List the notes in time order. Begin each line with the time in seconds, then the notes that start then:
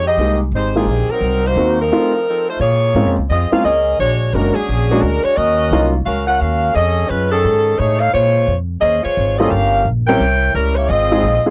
Already playing: F2
0.07 C4 G4 G#4 D#5
0.17 C2 G#3 A#3 D#4 G4
0.52 G#1 D#4 G4
0.56 G#3 C5
0.75 D#3 G#3 A#3 C4 D#4 F4 G4 G#4
0.86 A#1
1.11 F#3 C4 D#4 A#4
1.21 C2
1.46 A#3 D#4 F#4 C5
1.56 D#2 A#3 C4 D#4 F#4
1.81 F3 C4 D#4 A#4
1.92 A3 C4 D#4 F4
2.29 F3 C4 D#4 A4
2.48 A3 D#4 F4 C5
2.60 A#2 A#3 F4 G#4 C#5
2.95 G#2 G#3 A#3 C4 C#4 F4
3.06 F2
3.18 C#2
3.30 F2 C4 F4 G#4 D#5
3.52 G#3 A#3 C4 C#4 F4 G#4 A#4 F5, muted upright bass stroke
3.64 C#2 C#4 G#4 A#4 D#5
4.00 A#1 G#3 D4 F#4 C#5
4.33 F#1 G#3 A#3 C#4 D4 F#4 A#4
4.55 F#3 C#4 D4 G#4, muted upright bass stroke
4.69 A#1
4.91 G#3 A#3 C#4 D4 F#4
5.02 D2 G#3 D4 F#4 A#4
5.24 G#3 D4 F#4 C#5
5.36 D#2 C#4 F#4 A#4 D#5
5.71 C2 F#3 A#3 C#4 D#4 F4
6.05 C#2 C#4 F#4 A#4 F5
6.27 C#4 F4 A#4 F#5
6.40 D#2 C#4 F#4 A#4 F5
6.75 F2 C#4 G#4 A4 D#5
7.08 F#2 G#3 C#4 F4 B4
7.31 D#3 C#4 G#4 A4
7.45 G#2
7.78 A2 A3 D#4 G#4 C#5
8.00 D#4 A4 C#5 F5
8.13 A#2 G#3 F4 C5 C#5
8.48 F2
8.81 D#2 C#4 G#4 C5 D#5
9.03 G#3 F4 C5 C#5, muted upright bass stroke
9.17 G#1
9.37 G3 A#3 C#4 F4 G#4 A4 C5 D#5
9.50 G1 C#4 G4 A#4 F5
9.85 A#1
10.07 G3 C4 C#4 E4 A#4 C#5 G5
10.20 C2
10.54 C#2 G3 C#4 E4 A#4
10.75 A#3 E4 G4 C#5
10.89 G#1 C4 F4 G#4 D#5
11.12 G#3 C4 D#4 F4 G#4
11.23 A#1
11.45 G#3 C4 D#4 F4 G#4, muted upright bass stroke